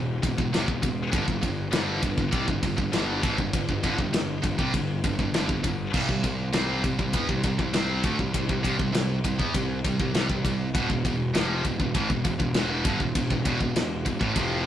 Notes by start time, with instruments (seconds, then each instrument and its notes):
Already playing: picked electric bass E1, distorted electric guitar E2 B2
0.23 picked electric bass E1, distorted electric guitar E2 B2, kick, ride
0.38 picked electric bass E1, distorted electric guitar E2 B2, kick
0.52 picked electric bass F1, distorted electric guitar F2 C3, snare, ride
0.67 picked electric bass E1, distorted electric guitar E2 B2, kick
0.82 picked electric bass E1, distorted electric guitar E2 B2, kick, ride
1.12 picked electric bass G1, distorted electric guitar G2 D3, kick, ride
1.26 picked electric bass G1, distorted electric guitar G2 D3, kick
1.41 picked electric bass G1, distorted electric guitar G2 D3, kick, ride
1.71 picked electric bass G1, distorted electric guitar G2 D3 G3, snare, ride
2.02 picked electric bass G1, distorted electric guitar G2 D3, kick, ride
2.17 picked electric bass G1, distorted electric guitar G2 D3, kick
2.32 picked electric bass C2, distorted electric guitar C3 G3, kick, ride
2.47 picked electric bass G1, distorted electric guitar G2 D3, kick
2.63 picked electric bass G1, distorted electric guitar G2 D3, kick, ride
2.76 picked electric bass G1, distorted electric guitar G2 D3, kick
2.92 picked electric bass G1, distorted electric guitar G2 D3 G3, snare, ride
3.23 picked electric bass A1, distorted electric guitar A2 E3, kick, ride
3.38 picked electric bass G1, distorted electric guitar G2 D3, kick
3.53 picked electric bass G1, distorted electric guitar G2 D3, kick, ride
3.69 picked electric bass G1, distorted electric guitar G2 D3, kick
3.83 picked electric bass G1, distorted electric guitar G2 D3, kick, ride
3.98 picked electric bass G1, distorted electric guitar G2 D3, kick
4.13 picked electric bass G1, distorted electric guitar G2 D3, snare, ride
4.43 picked electric bass G1, distorted electric guitar G2 D3, kick, ride
4.58 picked electric bass C2, distorted electric guitar C3 G3, kick
4.74 picked electric bass G1, distorted electric guitar G2 D3, kick, ride
5.04 picked electric bass G1, distorted electric guitar G2 D3, kick, ride
5.19 picked electric bass G1, distorted electric guitar G2 D3, kick
5.33 picked electric bass G1, distorted electric guitar G2 D3, snare, ride
5.49 picked electric bass G1, distorted electric guitar G2 D3, kick
5.64 picked electric bass G1, distorted electric guitar G2 D3, kick, ride
5.94 picked electric bass C2, distorted electric guitar C3 G3, kick, crash
6.08 picked electric bass C2, distorted electric guitar C3 G3, kick
6.23 picked electric bass C2, distorted electric guitar C3 G3, kick, ride
6.53 picked electric bass C2, distorted electric guitar C3 G3 C4, snare, ride
6.84 picked electric bass C2, distorted electric guitar C3 G3, kick, ride
6.98 picked electric bass C2, distorted electric guitar C3 G3, kick
7.13 picked electric bass E2, distorted electric guitar E3 B3, kick, ride
7.29 picked electric bass C2, distorted electric guitar C3 G3, kick
7.43 picked electric bass C2, distorted electric guitar C3 G3, kick, ride
7.58 picked electric bass C2, distorted electric guitar C3 G3, kick
7.73 picked electric bass C2, distorted electric guitar C3 G3 C4, snare, ride
8.03 picked electric bass D2, distorted electric guitar D3 A3, kick, ride
8.19 picked electric bass C2, distorted electric guitar C3 G3, kick
8.33 picked electric bass C2, distorted electric guitar C3 G3, kick, ride
8.49 picked electric bass C2, distorted electric guitar C3 G3, kick
8.63 picked electric bass C2, distorted electric guitar C3 G3, kick, ride
8.78 picked electric bass C2, distorted electric guitar C3 G3, kick
8.93 picked electric bass C2, distorted electric guitar C3 G3, snare, ride
9.24 picked electric bass C2, distorted electric guitar C3 G3, kick, ride
9.39 picked electric bass E2, distorted electric guitar E3 B3, kick
9.54 picked electric bass C2, distorted electric guitar C3 G3, kick, ride
9.85 picked electric bass C2, distorted electric guitar C3 G3, kick, ride
10.00 picked electric bass C2, distorted electric guitar C3 G3, kick
10.14 picked electric bass C2, distorted electric guitar C3 G3, snare, ride
10.29 picked electric bass C2, distorted electric guitar C3 G3, kick
10.44 picked electric bass C2, distorted electric guitar C3 G3, kick, ride
10.74 picked electric bass E1, distorted electric guitar E2 B2, kick, ride
10.90 picked electric bass E1, distorted electric guitar E2 B2, kick
11.04 picked electric bass E1, distorted electric guitar E2 B2, kick, ride
11.34 picked electric bass F1, distorted electric guitar F2 C3 F3, snare, ride
11.65 picked electric bass E1, distorted electric guitar E2 B2, kick, ride
11.80 picked electric bass E1, distorted electric guitar E2 B2, kick
11.95 picked electric bass A1, distorted electric guitar A2 E3, kick, ride
12.10 picked electric bass E1, distorted electric guitar E2 B2, kick
12.24 picked electric bass E1, distorted electric guitar E2 B2, kick, ride
12.39 picked electric bass E1, distorted electric guitar E2 B2, kick
12.54 picked electric bass E1, distorted electric guitar E2 B2 E3, snare, ride
12.85 picked electric bass G1, distorted electric guitar G2 D3, kick, ride
13.00 picked electric bass E1, distorted electric guitar E2 B2, kick
13.15 picked electric bass E1, distorted electric guitar E2 B2, kick, ride
13.30 picked electric bass E1, distorted electric guitar E2 B2, kick
13.45 picked electric bass E1, distorted electric guitar E2 B2, kick, ride
13.60 picked electric bass E1, distorted electric guitar E2 B2, kick
13.76 picked electric bass E1, distorted electric guitar E2 B2, snare, ride
14.06 picked electric bass E1, distorted electric guitar E2 B2, kick, ride
14.20 picked electric bass A1, distorted electric guitar A2 E3, kick
14.34 picked electric bass F1, distorted electric guitar F2 C3 F3, kick, ride